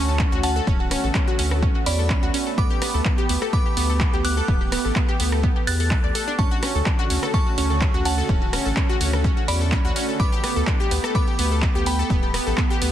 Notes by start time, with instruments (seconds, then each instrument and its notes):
Already playing: sub bass D2, supersaw synth D3 A3 C#4 F#4, synth bell A5 C#6
0.08 synth pluck A4
0.19 synth pluck C#4, kick, clap
0.32 sub bass D2, synth pluck F#4
0.43 synth pluck C#4, synth bell F#5 A5, open hi-hat
0.56 synth pluck A4
0.67 sub bass D1, supersaw synth B3, synth pluck C#4, kick
0.80 synth pluck F#4
0.91 synth pluck C#4, cross-stick, open hi-hat
1.04 sub bass A1, synth pluck A4
1.15 synth pluck C#4, kick, clap
1.28 synth pluck F#4
1.39 sub bass D2, synth pluck C#4, open hi-hat
1.51 synth pluck A4, cross-stick
1.63 synth pluck C#4, kick
1.75 synth pluck F#4
1.86 sub bass E2, synth pluck C#4, synth bell D5 B5, open hi-hat
1.99 synth pluck A4
2.10 synth pluck C#4, kick, clap
2.23 sub bass D2, synth pluck F#4
2.34 synth pluck C#4, open hi-hat
2.47 synth pluck A4
2.58 sub bass D2, synth pluck B3, supersaw synth G4, synth bell B5 D6, kick
2.70 synth pluck G4
2.82 synth pluck B3, cross-stick, open hi-hat
2.94 sub bass D2, synth pluck A4
3.05 synth pluck B3, kick, clap
3.18 synth pluck G4
3.29 sub bass D2, synth pluck B3, open hi-hat
3.42 synth pluck A4, cross-stick
3.53 synth pluck B3, synth bell B5 D6, kick
3.66 synth pluck G4
3.77 sub bass D2, synth pluck B3, open hi-hat
3.90 synth pluck A4
4.00 synth pluck B3, kick, clap
4.13 sub bass D2, synth pluck G4
4.25 synth pluck B3, synth bell D6 F#6, open hi-hat
4.37 synth pluck A4
4.48 sub bass D1, synth pluck B3, kick
4.61 synth pluck G4
4.72 synth pluck B3, cross-stick, open hi-hat
4.85 sub bass A1, synth pluck A4
4.96 synth pluck B3, kick, clap
5.09 synth pluck G4
5.20 sub bass D2, synth pluck B3, open hi-hat
5.32 synth pluck A4, cross-stick
5.43 synth pluck B3, kick
5.56 synth pluck G4
5.67 sub bass E2, synth pluck B3, synth bell F#6 A6, open hi-hat
5.80 synth pluck A4, open hi-hat
5.91 synth pluck A4, kick, clap
6.04 sub bass D2, synth pluck D5
6.15 synth pluck A4, open hi-hat
6.28 synth pluck D4
6.39 sub bass D2, supersaw synth C#3 D3 A3 F#4, synth pluck C#4, synth bell A5 C#6, kick
6.51 synth pluck F#4
6.62 synth pluck C#4, cross-stick, open hi-hat
6.75 sub bass D2, synth pluck A4
6.86 synth pluck D4, kick, clap
6.99 synth pluck F#4
7.10 sub bass D2, synth pluck C#4, open hi-hat
7.23 synth pluck A4, cross-stick
7.34 synth pluck C#4, synth bell A5 C#6, kick
7.47 synth pluck F#4
7.58 sub bass D2, synth pluck C#4, open hi-hat
7.70 synth pluck A4
7.81 synth pluck C#4, kick, clap
7.94 sub bass D2, synth pluck F#4
8.05 synth pluck C#4, synth bell F#5 A5, open hi-hat
8.18 synth pluck A4
8.29 sub bass D1, synth pluck C#4, kick
8.42 synth pluck F#4
8.53 synth pluck C#4, cross-stick, open hi-hat
8.66 sub bass A1, synth pluck A4
8.77 synth pluck C#4, kick, clap
8.89 synth pluck F#4
9.01 sub bass D2, synth pluck C#4, open hi-hat
9.13 synth pluck A4, cross-stick
9.24 synth pluck C#4, kick
9.37 synth pluck F#4
9.48 sub bass E2, synth pluck C#4, synth bell D5 B5, open hi-hat
9.61 synth pluck A4
9.72 synth pluck C#4, kick, clap
9.85 sub bass D2, synth pluck F#4
9.96 synth pluck C#4, open hi-hat
10.09 synth pluck A4
10.20 sub bass D2, synth pluck B3, supersaw synth B3 G4, synth bell B5 D6, kick
10.32 synth pluck G4
10.44 synth pluck B3, cross-stick, open hi-hat
10.56 sub bass D2, synth pluck A4
10.67 synth pluck D4, kick, clap
10.80 synth pluck G4
10.91 sub bass D2, synth pluck B3, open hi-hat
11.04 synth pluck A4, cross-stick
11.15 synth pluck B3, synth bell B5 D6, kick
11.28 synth pluck G4
11.39 sub bass D2, synth pluck B3, open hi-hat
11.51 synth pluck A4
11.62 synth pluck B3, kick, clap
11.75 sub bass D2, synth pluck G4
11.86 synth pluck B3, synth bell G5 B5, open hi-hat
11.99 synth pluck A4
12.10 sub bass D1, synth pluck B3, kick
12.23 synth pluck G4
12.34 synth pluck B3, cross-stick, open hi-hat
12.47 sub bass A1, synth pluck A4
12.58 synth pluck B3, kick, clap
12.70 synth pluck G4
12.82 sub bass D2, synth pluck B3, open hi-hat